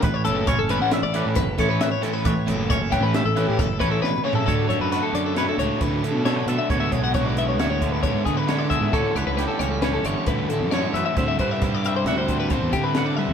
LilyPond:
<<
  \new Staff \with { instrumentName = "Clean electric guitar" } { \time 5/4 \key d \major \tempo 4 = 135 b'16 cis''16 a'8 cis''16 a'16 b'16 fis''16 e''16 d''8 r16 b'8 a'16 b'16 e''16 cis''16 a'16 b'16 | cis''8 a'8 cis''16 a'16 g'16 b'16 g'16 a'8 g'16 a'8 b'16 a'16 b'8 cis''16 a'16 | a'8 cis''16 b'16 b'16 a'16 d''16 a'16 b'16 a'16 cis''8 b'8 a'8 cis''8 e''16 e''16 | cis''16 e''16 cis''16 fis''16 cis''16 d''16 e''16 cis''16 e''16 cis''8 b'16 cis''8 gis'16 b'8 d''16 e''8 |
a'8 cis''16 b'16 b'16 a'16 cis''16 a'16 b'16 a'16 cis''8 b'8 a'8 cis''8 e''16 e''16 | c''16 e''16 c''16 e''16 c''16 d''16 e''16 c''16 e''16 c''8 b'16 c''8 g'16 b'8 d''16 e''8 | }
  \new Staff \with { instrumentName = "Clean electric guitar" } { \time 5/4 \key d \major << { b'4 cis''8 b'8 e''8 b'4 cis''8 b'4 | b'4 cis''8 b'8 e''8 b'4 cis''4. | cis''8 a'8 fis'4 cis''2 a'16 b'16 a'8 | cis''8 gis'8 fis'4 cis''2 cis''8 gis'8 |
cis''8 b'8 g'4 cis''2 cis''8 b'8 | e''8 b'8 e'4 fis''2 fis''8 b'8 | } \\ { a,4 cis'4. a,4. a,4 | a,4 cis'4. a,4. b,8 cis8 | d4. d'4 a,4. d4 | d4. b4 d4. d4 |
d4. cis'4 d4. d4 | d4. g4 d4. d4 | } >> }
  \new Staff \with { instrumentName = "Overdriven electric guitar" } { \time 5/4 \key d \major r8 <e a cis' e'>8 r8 <e a cis' e'>8 r8 <e a cis' e'>8 r8 <e a cis' e'>8 r8 <e a cis' e'>8 | r8 <e a cis' e'>8 r8 <e a cis' e'>8 r8 <e a cis' e'>8 r8 <e a cis' e'>8 r8 <e a cis' e'>8 | <d fis a d'>8 <fis a d'>8 <d fis a d'>8 <fis a d'>8 <d fis a d'>8 <fis a d'>8 <d fis a d'>8 <fis a d'>8 <d fis a d'>8 <fis a d'>8 | <d gis b e'>8 <gis b e'>8 <d gis b e'>8 <gis b e'>8 <d gis b e'>8 <gis b e'>8 <d gis b e'>8 <gis b e'>8 <d gis b e'>8 <gis b e'>8 |
<a, e g cis' e'>8 <g cis' e'>8 <a, e g cis' e'>8 <g cis' e'>8 <e g cis' e'>8 <g cis' e'>8 <a, e g cis' e'>8 <g cis' e'>8 <a, e g cis' e'>8 <g cis' e'>8 | <c g c' e'>8 <g c' e'>8 <c g c' e'>8 <g c' e'>8 <c g c' e'>8 <g c' e'>8 <c g c' e'>8 <g c' e'>8 <c g c' e'>8 <g c' e'>8 | }
  \new Staff \with { instrumentName = "Fingered electric bass" } { \clef bass \time 5/4 \key d \major a,,8 fis,,4~ fis,,16 a,,16 r16 a,,8 a,16 fis,,8 a,,8 r4 | a,,8 fis,,4~ fis,,16 a,,16 r16 a,,8 a,16 fis,,8 a,,8 r4 | d,16 r16 fis,16 fis,8 r16 fis,4 cis,16 r16 d,8 d16 b,8. b,16 r16 | d,8 b,,4. d,4~ d,16 gis,16 d4~ d16 gis,16 |
d,16 r16 cis,16 cis,8 r16 cis,4 g,,16 r16 d,8 d16 fis,8. fis,16 r16 | d,8 g,4. d,4~ d,16 e,16 d4~ d16 e,16 | }
  \new DrumStaff \with { instrumentName = "Drums" } \drummode { \time 5/4 <hh bd>8 hh8 <hh bd sn>8 hh8 <hh sn>8 hh8 <hh bd sn>8 <hh bd sn>8 <hh sn>8 <hh sn>8 | <hh bd>8 hh8 <hh bd>8 <hh bd>8 <hh sn>8 <hh sn>8 <hh bd>8 <hh bd>8 \tuplet 3/2 { sn8 toml8 tomfh8 } | <hh bd>8 hh8 <hh sn>8 hh8 <hh sn>8 hh8 <hh bd sn>8 hh8 <hh sn>8 hh8 | <hh bd>8 <hh bd>8 <hh bd sn>8 hh8 <hh sn>8 <hh bd>8 <hh bd>8 <hh bd>8 <hh sn>8 <hh bd>8 |
<hh bd>8 <hh sn>8 <hh sn>8 hh8 <hh sn>8 <hh sn>8 <hh bd>8 hh8 <hh sn>8 hh8 | <hh bd>8 <hh bd>8 <hh bd>8 hh8 <hh sn>8 <hh bd>8 <hh bd>8 <hh bd>8 <hh sn>8 tommh8 | }
>>